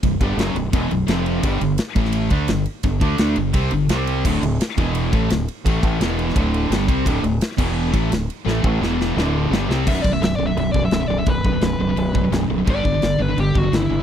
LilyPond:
<<
  \new Staff \with { instrumentName = "Lead electric guitar" } { \time 4/4 \key b \phrygian \tempo 4 = 171 r1 | r1 | r1 | r1 |
r1 | r1 | r1 | \tuplet 3/2 { e''8 d''8 e''8 e''8 d''8 e''8 e''8 d''8 e''8 e''8 d''8 e''8 } |
b'2. r4 | d''4. b'8 g'8 fis'8 e'4 | }
  \new Staff \with { instrumentName = "Distorted electric guitar" } { \clef bass \time 4/4 \key b \phrygian <b,, fis,>8 <g, d g>8 <fis, cis fis>8 <b,, fis,>8 <e, b, e>8 <b,, fis,>8 <f, c f>4 | <g, d g>8 <g, d>8 r8 <a, e a>4 <d a d'>8 <g, d>8 r8 | <g, d>8 <d a d'>8 <d a d'>8 <g, d>8 <c g c'>8 <g, d>8 <c g c'>4 | <d, a, d>8 <d, a,>8 r8 <e, b, e>4 <a, e a>8 <d, a,>8 r8 |
<a, e a>8 <a, e a>8 <e, b, e>4 <d, a, d>4 <g, d g>8 <c g c'>8 | <d, a, d>8 <d, a,>8 r8 <e, b, e>4 <a, e a>8 <d, a,>8 r8 | <a, e a>8 <a, e a>8 <e, b, e>4 <d, a, d>4 <g, d g>8 <c g c'>8 | r1 |
r1 | r1 | }
  \new Staff \with { instrumentName = "Distorted electric guitar" } { \clef bass \time 4/4 \key b \phrygian <b,, fis,>8 <g, d g>8 <fis, cis fis>8 <b,, fis,>8 <e, b, e>8 <b,, fis,>8 <f, c f>4 | <g, d g>8 <g, d>8 r8 <a, e a>4 <d a d'>8 <g, d>8 r8 | <g, d>8 <d a d'>8 <d a d'>8 <g, d>8 <c g c'>8 <g, d>8 <c g c'>4 | <d, a, d>8 <d, a,>8 r8 <e, b, e>4 <a, e a>8 <d, a,>8 r8 |
<a, e a>8 <a, e a>8 <e, b, e>4 <d, a, d>4 <g, d g>8 <c g c'>8 | <d, a, d>8 <d, a,>8 r8 <e, b, e>4 <a, e a>8 <d, a,>8 r8 | <a, e a>8 <a, e a>8 <e, b, e>4 <d, a, d>4 <g, d g>8 <c g c'>8 | <b,, fis, b,>8 <b,, fis,>16 <b,, fis,>16 <b,, fis,>8 <b,, fis,>16 <b,, fis,>16 <b,, fis,>8 <b,, fis,>16 <b,, fis,>16 <b,, fis,>16 <b,, fis,>16 <b,, fis,>16 <b,, fis,>16 |
<b,, fis,>8 <b,, fis,>16 <b,, fis,>16 <b,, fis,>8 <b,, fis,>16 <b,, fis,>16 <b,, fis,>8 <b,, fis,>16 <b,, fis,>16 <b,, fis,>16 <b,, fis,>16 <b,, fis,>16 <b,, fis,>16 | <g, d g>8 <g, d>16 <g, d>16 <g, d>8 <g, d>16 <g, d>16 <g, d>8 <g, d>16 <g, d>16 <g, d>16 <g, d>16 <g, d>16 r16 | }
  \new Staff \with { instrumentName = "Distorted electric guitar" } { \clef bass \time 4/4 \key b \phrygian <b,, fis,>8 <g, d g>8 <fis, cis fis>8 <b,, fis,>8 <e, b, e>8 <b,, fis,>8 <f, c f>4 | <g, d g>8 <g, d>8 r8 <a, e a>4 <d a d'>8 <g, d>8 r8 | <g, d>8 <d a d'>8 <d a d'>8 <g, d>8 <c g c'>8 <g, d>8 <c g c'>4 | <d, a, d>8 <d, a,>8 r8 <e, b, e>4 <a, e a>8 <d, a,>8 r8 |
<a, e a>8 <a, e a>8 <e, b, e>4 <d, a, d>4 <g, d g>8 <c g c'>8 | <d, a, d>8 <d, a,>8 r8 <e, b, e>4 <a, e a>8 <d, a,>8 r8 | <a, e a>8 <a, e a>8 <e, b, e>4 <d, a, d>4 <g, d g>8 <c g c'>8 | <b,, fis, b,>8 <b,, fis,>16 <b,, fis,>16 <b,, fis,>8 <b,, fis,>16 <b,, fis,>16 <b,, fis,>8 <b,, fis,>16 <b,, fis,>16 <b,, fis,>16 <b,, fis,>16 <b,, fis,>16 <b,, fis,>16 |
<b,, fis,>8 <b,, fis,>16 <b,, fis,>16 <b,, fis,>8 <b,, fis,>16 <b,, fis,>16 <b,, fis,>8 <b,, fis,>16 <b,, fis,>16 <b,, fis,>16 <b,, fis,>16 <b,, fis,>16 <b,, fis,>16 | <g, d g>8 <g, d>16 <g, d>16 <g, d>8 <g, d>16 <g, d>16 <g, d>8 <g, d>16 <g, d>16 <g, d>16 <g, d>16 <g, d>16 <g, d>16 | }
  \new Staff \with { instrumentName = "Fingered electric bass" } { \clef bass \time 4/4 \key b \phrygian b,,,8 g,,8 fis,,8 b,,,8 e,,8 b,,,8 f,,4 | g,,8 g,,8 r8 a,,4 d,8 g,,8 r8 | g,,8 d,8 d,8 g,,8 c,8 g,,8 c,4 | d,,8 d,,8 r8 e,,4 a,,8 d,,8 r8 |
a,,8 a,,8 e,,4 d,,4 g,,8 c,8 | d,,8 d,,8 r8 e,,4 a,,8 d,,8 r8 | a,,8 a,,8 e,,4 d,,4 g,,8 c,8 | b,,,8 b,,,8 b,,,8 b,,,8 b,,,8 b,,,8 b,,,8 b,,,8 |
b,,,8 b,,,8 b,,,8 b,,,8 b,,,4 b,,,8 b,,,8 | g,,8 g,,8 g,,8 g,,8 g,,8 g,,8 g,,8 g,,8 | }
  \new DrumStaff \with { instrumentName = "Drums" } \drummode { \time 4/4 <bd cymr>8 <bd cymr>8 <cymr sn>8 cymr8 <bd cymr>8 cymr8 <cymr sn>8 cymr8 | <bd cymr>8 cymr8 <cymr sn>8 <bd cymr>16 sn16 cymr8 <bd cymr>8 <cymr sn>8 cymr8 | <bd cymr>8 <bd cymr>8 <cymr sn>8 cymr8 <bd cymr>8 cymr8 <cymr sn>8 cymr8 | <cymc bd>8 cymr8 <cymr sn>16 sn16 <bd cymr>8 cymr8 <bd cymr>8 <cymr sn>8 cymr8 |
<bd cymr>8 <bd cymr>8 <cymr sn>8 cymr16 sn16 <bd cymr>8 cymr8 <cymr sn>8 <bd cymr>8 | <bd cymr>8 cymr8 <cymr sn>16 sn16 <cymc bd>8 r8 <bd cymr>8 <cymr sn>8 cymr8 | sn8 bd8 sn8 sn8 sn4 sn8 sn8 | <cymc bd>8 bd8 <cymc sn>16 sn8. cymc8 bd8 <cymc sn>4 |
<cymc bd>8 bd8 <cymc sn>4 cymc8 bd8 <cymc sn>4 | <cymc bd>8 bd8 <cymc sn>4 cymc8 bd8 <cymc sn>4 | }
>>